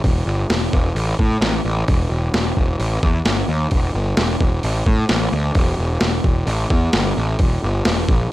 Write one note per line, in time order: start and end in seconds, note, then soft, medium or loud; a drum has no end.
0.04 0.22 E1 loud
0.04 kick loud
0.04 open hi-hat medium
0.26 0.44 G1 medium
0.50 0.68 E1 medium
0.50 snare loud
0.50 open hi-hat medium
0.73 0.91 E1 medium
0.73 kick medium
0.95 1.13 A1 medium
0.95 open hi-hat soft
1.19 1.37 A2 medium
1.19 kick medium
1.41 1.59 A1 medium
1.41 snare loud
1.41 open hi-hat soft
1.65 1.82 A1 medium
1.88 2.06 E1 medium
1.88 kick medium
1.88 open hi-hat soft
2.10 2.28 E1 medium
2.34 2.51 E1 medium
2.34 snare loud
2.34 open hi-hat medium
2.57 2.74 E1 medium
2.57 kick medium
2.79 2.97 A1 medium
2.79 open hi-hat soft
3.03 3.21 E2 medium
3.03 kick medium
3.25 3.43 G1 medium
3.25 snare loud
3.25 open hi-hat medium
3.48 3.66 D#2 medium
3.71 3.89 E1 medium
3.71 kick loud
3.71 open hi-hat medium
3.94 4.12 G1 medium
4.17 4.35 E1 medium
4.17 snare loud
4.17 open hi-hat medium
4.40 4.58 E1 medium
4.40 kick medium
4.63 4.82 A1 medium
4.63 open hi-hat medium
4.86 5.04 A2 medium
4.86 kick medium
5.09 5.27 A1 medium
5.09 snare loud
5.09 open hi-hat soft
5.32 5.50 D2 medium
5.55 5.73 E1 loud
5.55 kick loud
5.55 open hi-hat medium
5.78 5.96 E1 medium
6.01 6.19 E1 medium
6.01 snare loud
6.01 open hi-hat medium
6.24 6.42 E1 medium
6.24 kick medium
6.47 6.65 A1 loud
6.47 open hi-hat medium
6.70 6.88 E2 medium
6.70 kick medium
6.93 7.12 G1 loud
6.93 snare loud
6.93 open hi-hat medium
7.17 7.35 A1 medium
7.39 7.57 E1 loud
7.39 kick loud
7.39 open hi-hat medium
7.63 7.81 G1 medium
7.85 8.04 E1 loud
7.85 snare loud
7.85 open hi-hat medium
8.08 8.26 A#1 medium
8.08 kick medium